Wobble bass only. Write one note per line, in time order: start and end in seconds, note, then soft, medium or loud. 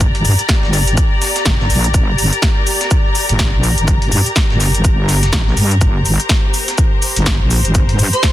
0.00 0.23 G1 loud
0.25 0.37 G2 medium
0.63 0.96 G1 loud
1.46 1.68 G1 medium
1.70 1.93 A#1 loud
1.94 2.30 G1 loud
3.29 3.51 G1 loud
3.54 3.75 A#1 medium
3.78 4.10 G1 loud
4.12 4.24 G2 medium
4.50 4.83 G1 medium
4.85 5.31 G1 medium
5.33 5.56 A#1 medium
5.57 5.80 G2 medium
5.81 6.17 G1 loud
7.16 7.38 G1 medium
7.41 7.63 A#1 medium
7.65 7.97 G1 loud
7.99 8.11 G2 loud